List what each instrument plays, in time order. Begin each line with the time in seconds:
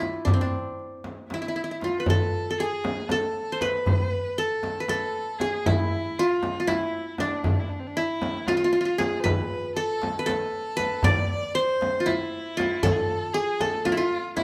Already playing: qanun D4 E4
0.00 darbuka tek, frame drum
0.25 qanun D4, darbuka dum, frame drum
0.34 qanun C4
0.41 qanun D4
0.53 darbuka ka
0.79 darbuka ka
1.04 darbuka tek, frame drum
1.29 violin E4, darbuka tek, frame drum
1.34 qanun E4
1.42 qanun E4
1.48 qanun E4
1.56 qanun E4
1.64 qanun E4
1.71 qanun E4
1.80 violin F4, qanun F4, darbuka tek, frame drum
1.98 violin B4, qanun B4
2.06 violin A4, qanun A4, frame drum, darbuka dum
2.34 darbuka ka
2.50 qanun A4
2.57 violin G#4, qanun G#4
2.84 darbuka tek, frame drum
3.08 violin A4, qanun A4, darbuka tek, frame drum
3.35 darbuka ka
3.52 qanun C5
3.60 violin B4, qanun B4, darbuka tek, frame drum
3.86 darbuka dum, frame drum
4.13 darbuka ka
4.38 qanun A4, violin A4
4.63 darbuka tek, frame drum
4.80 qanun B4
4.88 violin A4, qanun A4, darbuka tek, frame drum
5.16 darbuka ka
5.39 violin G#4, qanun G#4, darbuka tek, frame drum
5.66 qanun E4, violin E4, frame drum, darbuka dum
5.93 darbuka ka
6.18 violin E4, qanun F4
6.29 violin F4
6.43 darbuka tek, frame drum
6.60 qanun F4
6.67 qanun E4, violin E4, darbuka tek, frame drum
6.95 darbuka ka
7.18 qanun D4, violin D4, darbuka tek, frame drum
7.44 frame drum, darbuka dum
7.60 violin E4
7.69 violin D4, darbuka ka
7.80 violin C4
7.87 violin D4
7.97 qanun E4, violin E4, darbuka ka
8.22 darbuka tek, frame drum
8.46 violin F4, qanun F4, darbuka tek, frame drum
8.57 qanun F4
8.64 qanun F4
8.72 violin F4, qanun F4, darbuka ka
8.81 qanun F4
8.85 qanun F4
8.98 qanun G#4, violin G#4, darbuka tek, frame drum
9.20 violin C5
9.24 qanun B4, violin B4, darbuka dum, frame drum
9.50 darbuka ka
9.75 violin A4, qanun A4
10.02 darbuka tek, frame drum
10.19 qanun B4
10.26 qanun A4, violin A4, darbuka tek, frame drum
10.53 darbuka ka
10.77 qanun B4, frame drum
11.03 violin D5, qanun D5, darbuka dum, frame drum
11.30 violin D5, darbuka ka
11.54 violin C5, qanun C5
11.81 darbuka tek, frame drum
12.00 qanun F4
12.06 qanun E4, violin E4, darbuka tek, frame drum
12.33 darbuka ka
12.57 qanun F4, darbuka tek, frame drum
12.83 qanun A4, violin A4, darbuka dum, frame drum
12.92 violin G#4
12.96 violin A4
13.09 darbuka ka
13.33 violin G#4, qanun G#4
13.60 violin A4, qanun A4, darbuka tek, frame drum
13.85 violin F4, qanun F4, darbuka tek, frame drum
13.92 qanun E4
13.97 qanun F4, violin F4
14.12 darbuka ka
14.36 qanun E4, violin E4, darbuka tek, frame drum